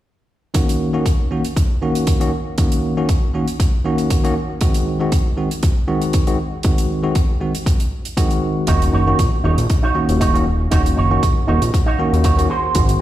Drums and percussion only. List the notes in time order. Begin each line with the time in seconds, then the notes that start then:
0.54 kick, closed hi-hat
0.69 closed hi-hat
1.06 kick, closed hi-hat
1.45 closed hi-hat
1.56 kick, closed hi-hat
1.95 closed hi-hat
2.07 kick, closed hi-hat
2.21 closed hi-hat
2.58 kick, closed hi-hat
2.72 closed hi-hat
3.09 kick, closed hi-hat
3.48 closed hi-hat
3.60 kick, closed hi-hat
3.98 closed hi-hat
4.10 kick, closed hi-hat
4.25 closed hi-hat
4.61 kick, closed hi-hat
4.74 closed hi-hat
5.12 kick, closed hi-hat
5.51 closed hi-hat
5.63 kick, closed hi-hat
6.02 closed hi-hat
6.13 kick, closed hi-hat
6.27 closed hi-hat
6.63 kick, closed hi-hat
6.78 closed hi-hat
7.15 kick, closed hi-hat
7.55 closed hi-hat
7.66 kick, closed hi-hat
7.80 closed hi-hat
8.05 closed hi-hat
8.17 kick, closed hi-hat
8.31 closed hi-hat
8.67 kick, closed hi-hat
8.82 closed hi-hat
9.19 kick, closed hi-hat
9.58 closed hi-hat
9.70 kick, closed hi-hat
10.09 closed hi-hat
10.21 kick, closed hi-hat
10.36 closed hi-hat
10.72 kick, closed hi-hat
10.86 closed hi-hat
11.23 kick, closed hi-hat
11.62 closed hi-hat
11.74 kick, closed hi-hat
12.14 closed hi-hat
12.24 kick, closed hi-hat
12.39 closed hi-hat
12.75 kick, closed hi-hat
12.89 closed hi-hat